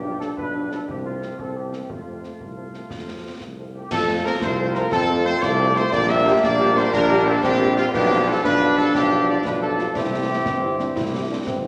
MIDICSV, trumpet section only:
0, 0, Header, 1, 2, 480
1, 0, Start_track
1, 0, Key_signature, -1, "major"
1, 0, Tempo, 336134
1, 1262, Time_signature, 6, 3, 24, 8
1, 16668, End_track
2, 0, Start_track
2, 0, Title_t, "Trumpet section"
2, 0, Program_c, 0, 61
2, 0, Note_on_c, 0, 67, 79
2, 280, Note_on_c, 0, 69, 78
2, 293, Note_off_c, 0, 67, 0
2, 393, Note_off_c, 0, 69, 0
2, 533, Note_on_c, 0, 71, 78
2, 984, Note_off_c, 0, 71, 0
2, 1013, Note_on_c, 0, 69, 60
2, 1124, Note_off_c, 0, 69, 0
2, 1254, Note_on_c, 0, 67, 72
2, 1364, Note_off_c, 0, 67, 0
2, 1491, Note_on_c, 0, 65, 60
2, 1944, Note_off_c, 0, 65, 0
2, 1974, Note_on_c, 0, 69, 61
2, 2220, Note_off_c, 0, 69, 0
2, 2224, Note_on_c, 0, 67, 50
2, 2706, Note_off_c, 0, 67, 0
2, 2715, Note_on_c, 0, 65, 52
2, 5118, Note_off_c, 0, 65, 0
2, 5361, Note_on_c, 0, 67, 73
2, 5579, Note_off_c, 0, 67, 0
2, 5590, Note_on_c, 0, 69, 114
2, 6037, Note_off_c, 0, 69, 0
2, 6069, Note_on_c, 0, 70, 121
2, 6177, Note_off_c, 0, 70, 0
2, 6307, Note_on_c, 0, 72, 106
2, 6755, Note_off_c, 0, 72, 0
2, 6774, Note_on_c, 0, 70, 109
2, 7019, Note_on_c, 0, 69, 127
2, 7021, Note_off_c, 0, 70, 0
2, 7470, Note_off_c, 0, 69, 0
2, 7498, Note_on_c, 0, 72, 127
2, 7726, Note_off_c, 0, 72, 0
2, 7736, Note_on_c, 0, 74, 127
2, 8209, Note_on_c, 0, 72, 127
2, 8222, Note_off_c, 0, 74, 0
2, 8446, Note_on_c, 0, 74, 127
2, 8458, Note_off_c, 0, 72, 0
2, 8679, Note_off_c, 0, 74, 0
2, 8688, Note_on_c, 0, 76, 127
2, 9177, Note_off_c, 0, 76, 0
2, 9185, Note_on_c, 0, 74, 127
2, 9631, Note_off_c, 0, 74, 0
2, 9662, Note_on_c, 0, 72, 127
2, 9897, Note_on_c, 0, 70, 127
2, 9904, Note_off_c, 0, 72, 0
2, 10347, Note_off_c, 0, 70, 0
2, 10367, Note_on_c, 0, 69, 127
2, 10615, Note_off_c, 0, 69, 0
2, 10620, Note_on_c, 0, 67, 127
2, 11067, Note_off_c, 0, 67, 0
2, 11088, Note_on_c, 0, 65, 127
2, 11199, Note_off_c, 0, 65, 0
2, 11336, Note_on_c, 0, 67, 127
2, 11785, Note_off_c, 0, 67, 0
2, 11809, Note_on_c, 0, 69, 127
2, 12048, Note_on_c, 0, 71, 127
2, 12055, Note_off_c, 0, 69, 0
2, 12500, Note_off_c, 0, 71, 0
2, 12529, Note_on_c, 0, 69, 117
2, 12757, Note_off_c, 0, 69, 0
2, 12771, Note_on_c, 0, 67, 120
2, 13221, Note_off_c, 0, 67, 0
2, 13260, Note_on_c, 0, 74, 117
2, 13368, Note_off_c, 0, 74, 0
2, 13499, Note_on_c, 0, 71, 102
2, 13607, Note_off_c, 0, 71, 0
2, 13725, Note_on_c, 0, 69, 99
2, 14177, Note_off_c, 0, 69, 0
2, 14213, Note_on_c, 0, 67, 103
2, 16316, Note_off_c, 0, 67, 0
2, 16668, End_track
0, 0, End_of_file